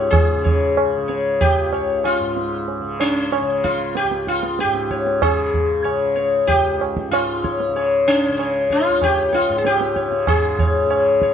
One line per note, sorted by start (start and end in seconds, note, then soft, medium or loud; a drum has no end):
0.00 1.56 C#2 medium
0.00 2.19 G#2 medium
0.00 0.34 C#3 medium
0.00 0.10 G4 medium
0.00 0.11 C#5 soft
0.11 1.04 G#4 medium
0.11 tabla na medium
0.11 tabla ge medium
0.34 0.97 C#3 medium
0.44 0.74 C#5 soft
0.44 tabla ge medium
0.77 tabla na medium
0.97 2.80 C#3 medium
1.08 1.38 C#5 soft
1.08 tabla te medium
1.41 2.05 G4 medium
1.41 tabla tin medium
1.41 tabla ge medium
1.56 4.03 C#2 medium
1.73 2.03 C#5 soft
1.73 tabla na medium
2.04 2.65 F4 medium
2.04 tabla na medium
2.19 4.64 G#2 medium
2.37 tabla te medium
2.68 tabla tin medium
2.80 3.41 C#3 medium
3.00 3.66 C#4 medium
3.00 tabla na medium
3.32 3.62 C#5 soft
3.32 tabla na medium
3.41 5.24 C#3 medium
3.64 3.96 F4 medium
3.64 tabla ke medium
3.95 4.28 G4 medium
3.95 tabla te medium
4.04 6.46 C#2 medium
4.11 tabla te medium
4.27 4.60 F4 medium
4.27 tabla ke medium
4.43 tabla te medium
4.59 5.22 G4 medium
4.59 tabla te medium
4.64 7.08 G#2 medium
4.75 tabla te medium
4.91 5.20 C#5 soft
4.91 tabla ke medium
5.07 tabla te medium
5.22 5.84 C#3 medium
5.22 6.14 G#4 medium
5.22 tabla na loud
5.22 tabla ge medium
5.54 tabla ge medium
5.84 7.68 C#3 medium
5.84 6.14 C#5 soft
5.84 tabla na medium
6.16 6.46 C#5 soft
6.16 tabla te medium
6.46 8.88 C#2 medium
6.46 7.11 G4 medium
6.46 tabla tin medium
6.46 tabla ge medium
6.81 tabla na medium
6.97 tabla ke medium
7.08 9.48 G#2 medium
7.08 7.71 F4 medium
7.13 tabla na medium
7.44 7.73 C#5 soft
7.44 tabla ke medium
7.60 tabla te medium
7.68 8.29 C#3 medium
7.76 8.05 C#5 soft
7.76 tabla tin medium
8.08 8.72 C#4 medium
8.08 tabla na medium
8.29 10.08 C#3 medium
8.39 8.69 C#5 soft
8.39 tabla na medium
8.70 9.03 F4 medium
8.70 9.00 C#5 soft
8.70 tabla ke medium
8.89 11.34 C#2 medium
9.02 9.34 G4 medium
9.02 9.31 C#5 soft
9.02 tabla na medium
9.02 tabla ge medium
9.33 9.58 F4 medium
9.33 9.62 C#5 soft
9.33 tabla te medium
9.49 10.27 G#2 medium
9.58 9.65 G#4 medium
9.65 10.28 G4 medium
9.65 9.94 C#5 soft
9.65 tabla te medium
9.80 tabla te medium
9.96 10.25 C#5 soft
9.96 tabla ke medium
10.08 10.86 C#3 medium
10.08 tabla te medium
10.27 11.34 G#2 medium
10.27 11.18 G#4 medium
10.27 tabla na loud
10.27 tabla ge medium
10.59 10.88 C#5 soft
10.59 tabla ge medium
10.86 11.34 C#3 medium
10.90 11.19 C#5 soft
10.90 tabla na medium
11.22 11.34 C#5 soft
11.22 tabla ke medium